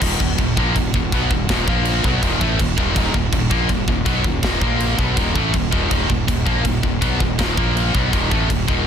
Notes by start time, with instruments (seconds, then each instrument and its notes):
0.00 fingered electric bass D#1, distorted electric guitar D#2 A#2 D#3, kick, crash
0.19 fingered electric bass D#1, distorted electric guitar D#2 A#2, kick
0.38 fingered electric bass D#1, distorted electric guitar D#2 A#2, kick, crash
0.57 fingered electric bass A#1, distorted electric guitar A#2 F3 A#3, kick
0.76 fingered electric bass D#1, distorted electric guitar D#2 A#2, kick, crash
0.94 fingered electric bass D#1, distorted electric guitar D#2 A#2, kick
1.12 fingered electric bass B1, distorted electric guitar B2 F#3 B3, kick, crash
1.31 fingered electric bass D#1, distorted electric guitar D#2 A#2, kick
1.49 fingered electric bass D#1, distorted electric guitar D#2 A#2 D#3, kick, snare, crash
1.68 fingered electric bass A#1, distorted electric guitar A#2 F3 A#3, kick
1.85 crash
2.04 fingered electric bass B1, distorted electric guitar B2 F#3 B3, kick
2.23 fingered electric bass D#1, distorted electric guitar D#2 A#2 D#3, kick, crash
2.41 fingered electric bass A1, distorted electric guitar A2 E3 A3, kick
2.59 fingered electric bass D#1, distorted electric guitar D#2 A#2, kick, crash
2.78 fingered electric bass D#1, distorted electric guitar D#2 A#2 D#3, kick
2.96 fingered electric bass D#1, distorted electric guitar D#2 A#2 D#3, kick, crash
3.14 fingered electric bass D#1, distorted electric guitar D#2 A#2, kick
3.33 fingered electric bass D#1, distorted electric guitar D#2 A#2, kick, crash
3.50 fingered electric bass A#1, distorted electric guitar A#2 F3 A#3, kick
3.68 fingered electric bass D#1, distorted electric guitar D#2 A#2, kick, crash
3.88 fingered electric bass D#1, distorted electric guitar D#2 A#2, kick
4.05 fingered electric bass B1, distorted electric guitar B2 F#3 B3, kick, crash
4.24 fingered electric bass D#1, distorted electric guitar D#2 A#2, kick
4.43 fingered electric bass D#1, distorted electric guitar D#2 A#2 D#3, kick, snare, crash
4.62 fingered electric bass A#1, distorted electric guitar A#2 F3 A#3, kick
4.80 crash
4.99 fingered electric bass B1, distorted electric guitar B2 F#3 B3, kick
5.17 fingered electric bass D#1, distorted electric guitar D#2 A#2 D#3, kick, crash
5.35 fingered electric bass A1, distorted electric guitar A2 E3 A3, kick
5.53 fingered electric bass D#1, distorted electric guitar D#2 A#2, kick, crash
5.71 fingered electric bass D#1, distorted electric guitar D#2 A#2 D#3, kick
5.90 fingered electric bass D#1, distorted electric guitar D#2 A#2 D#3, kick, crash
6.09 fingered electric bass D#1, distorted electric guitar D#2 A#2, kick
6.28 fingered electric bass D#1, distorted electric guitar D#2 A#2, kick, crash
6.45 fingered electric bass A#1, distorted electric guitar A#2 F3 A#3, kick
6.64 fingered electric bass D#1, distorted electric guitar D#2 A#2, kick, crash
6.83 fingered electric bass D#1, distorted electric guitar D#2 A#2, kick
7.01 fingered electric bass B1, distorted electric guitar B2 F#3 B3, kick, crash
7.20 fingered electric bass D#1, distorted electric guitar D#2 A#2, kick
7.39 fingered electric bass D#1, distorted electric guitar D#2 A#2 D#3, kick, snare, crash
7.57 fingered electric bass A#1, distorted electric guitar A#2 F3 A#3, kick
7.77 crash
7.94 fingered electric bass B1, distorted electric guitar B2 F#3 B3, kick
8.12 fingered electric bass D#1, distorted electric guitar D#2 A#2 D#3, kick, crash
8.30 fingered electric bass A1, distorted electric guitar A2 E3 A3, kick
8.49 fingered electric bass D#1, distorted electric guitar D#2 A#2, kick, crash
8.67 fingered electric bass D#1, distorted electric guitar D#2 A#2 D#3, kick